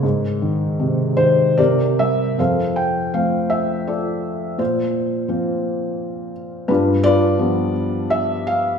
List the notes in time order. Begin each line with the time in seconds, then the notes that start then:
Already playing: G#4 A#4 C#5
0.03 G#2
0.42 D#3
0.79 C3
1.17 D#3 C5
1.58 C3 G4 A#4 D5
1.99 G3 E5
2.38 F2 A4 C5 F5
2.76 G5
3.14 F3 A3 C4 F5
3.50 E5
3.87 F4 A4 D5
4.58 A#2 F4 C5
5.28 F3 A#3 C4
6.68 G2 D4 F4 B4
7.04 F4 B4 D5
7.38 F3 G3 B3
8.10 E5
8.47 F5